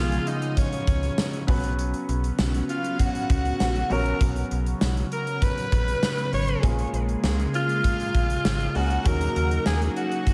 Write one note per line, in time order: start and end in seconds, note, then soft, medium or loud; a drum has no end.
0.00 0.19 B1 loud
0.00 6.59 C#3 medium
0.00 1.44 F3 medium
0.00 1.44 G#3 medium
0.00 1.44 B3 medium
0.00 1.44 C#4 medium
0.00 0.29 F4 loud
0.00 1.44 F4 medium
0.00 1.45 A#4 medium
0.00 0.27 F5 medium
0.12 closed hi-hat medium
0.27 0.60 D#4 medium
0.27 0.57 D#5 medium
0.27 closed hi-hat medium
0.42 closed hi-hat medium
0.57 1.49 C#4 medium
0.57 1.48 C#5 medium
0.57 kick loud
0.57 closed hi-hat medium
0.72 closed hi-hat soft
0.87 1.10 C#2 medium
0.87 kick loud
0.87 closed hi-hat medium
1.03 closed hi-hat medium
1.18 snare loud
1.18 tambourine medium
1.33 closed hi-hat soft
1.47 1.94 B1 loud
1.47 3.86 F#3 medium
1.47 6.59 F#3 medium
1.47 3.86 B3 medium
1.47 6.59 B3 medium
1.47 6.59 C#4 medium
1.47 3.87 C#4 medium
1.47 3.87 B4 medium
1.47 kick loud
1.47 open hi-hat medium
1.64 closed hi-hat medium
1.79 closed hi-hat medium
1.94 closed hi-hat medium
2.09 2.31 B1 loud
2.09 closed hi-hat medium
2.24 closed hi-hat medium
2.39 2.62 B1 loud
2.39 snare loud
2.39 tambourine medium
2.54 closed hi-hat medium
2.69 3.01 F4 medium
2.69 2.97 F5 medium
2.69 closed hi-hat medium
2.84 closed hi-hat medium
2.99 3.93 F#4 medium
2.99 3.90 F#5 medium
2.99 kick medium
2.99 closed hi-hat medium
3.15 closed hi-hat medium
3.30 3.53 C#2 medium
3.30 kick loud
3.30 closed hi-hat medium
3.45 closed hi-hat medium
3.60 3.83 A#1 medium
3.60 snare loud
3.60 tambourine medium
3.75 closed hi-hat soft
3.90 4.13 A#1 medium
3.90 6.29 F#3 medium
3.90 6.29 B3 medium
3.90 6.29 C#4 medium
3.90 6.29 F#4 medium
3.90 4.21 A#4 loud
3.90 6.30 C#5 medium
3.90 4.21 A#5 medium
3.90 open hi-hat medium
4.06 closed hi-hat medium
4.21 4.43 B1 loud
4.21 kick loud
4.21 closed hi-hat medium
4.36 closed hi-hat medium
4.51 4.74 B1 loud
4.51 closed hi-hat medium
4.66 closed hi-hat medium
4.81 5.04 B1 loud
4.81 snare loud
4.81 tambourine medium
4.97 closed hi-hat medium
5.12 5.44 A#4 medium
5.12 5.40 A#5 medium
5.12 closed hi-hat medium
5.27 closed hi-hat medium
5.42 6.33 B4 loud
5.42 6.33 B5 medium
5.42 kick loud
5.42 closed hi-hat medium
5.58 closed hi-hat soft
5.72 5.95 A#1 medium
5.72 kick loud
5.72 closed hi-hat medium
5.88 closed hi-hat medium
6.03 snare loud
6.03 tambourine medium
6.18 closed hi-hat soft
6.33 6.56 G#1 medium
6.33 6.62 C#5 loud
6.33 6.61 C#6 medium
6.33 open hi-hat medium
6.48 closed hi-hat medium
6.62 6.86 A#1 loud
6.62 10.34 C#3 medium
6.62 8.71 G#3 medium
6.62 9.03 G#3 medium
6.62 8.71 A#3 medium
6.62 10.34 A#3 medium
6.62 8.71 C#4 medium
6.62 8.72 F4 medium
6.62 9.03 G#4 medium
6.62 8.72 G#4 medium
6.62 kick loud
6.62 closed hi-hat loud
6.79 closed hi-hat medium
6.93 7.16 A#1 medium
6.93 closed hi-hat medium
7.09 closed hi-hat medium
7.24 7.46 C#2 loud
7.24 snare loud
7.24 tambourine medium
7.39 closed hi-hat medium
7.54 8.77 F4 loud
7.54 8.72 F5 medium
7.54 closed hi-hat medium
7.69 closed hi-hat medium
7.84 kick medium
7.84 closed hi-hat medium
8.00 closed hi-hat soft
8.15 8.37 A#1 loud
8.15 kick loud
8.15 closed hi-hat medium
8.30 closed hi-hat medium
8.45 8.68 G#1 loud
8.45 snare loud
8.45 tambourine medium
8.60 closed hi-hat soft
8.75 8.98 C#2 medium
8.75 9.05 G#3 medium
8.75 9.04 A#3 soft
8.75 9.04 C#4 soft
8.75 9.08 F#4 loud
8.75 9.06 G#4 medium
8.75 9.06 F#5 medium
8.75 open hi-hat medium
8.90 closed hi-hat medium
9.04 9.28 D#2 loud
9.04 10.34 F#3 medium
9.04 10.34 A#3 medium
9.04 10.34 C#4 medium
9.04 10.34 D#4 medium
9.04 10.34 F#4 medium
9.04 9.66 A#4 loud
9.04 9.66 A#5 loud
9.04 kick loud
9.04 closed hi-hat medium
9.21 closed hi-hat medium
9.36 9.59 D#2 medium
9.36 closed hi-hat medium
9.51 closed hi-hat medium
9.66 9.89 D#2 medium
9.66 9.80 G#4 medium
9.66 9.80 G#5 medium
9.66 snare loud
9.66 tambourine medium
9.82 closed hi-hat medium
9.96 10.34 F#4 medium
9.96 10.34 F#5 medium
9.96 closed hi-hat medium
10.12 closed hi-hat medium
10.27 kick loud
10.27 closed hi-hat medium